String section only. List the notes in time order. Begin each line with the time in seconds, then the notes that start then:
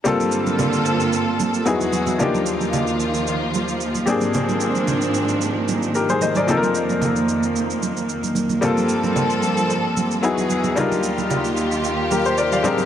0.05 G2 D3 A#3 C4 F4 A4
1.66 E2 E3 G#3 F#4
2.20 D#2 D#3 F3 F4
4.07 G#2 D#3 A#3 C4 D4
6.48 F2
8.62 G2 F3 C4 A4
10.23 E2 E3 F#4 G#4
10.77 D#2 D#3 F4 G4
12.64 G#2 D#3 A#3 C4 D4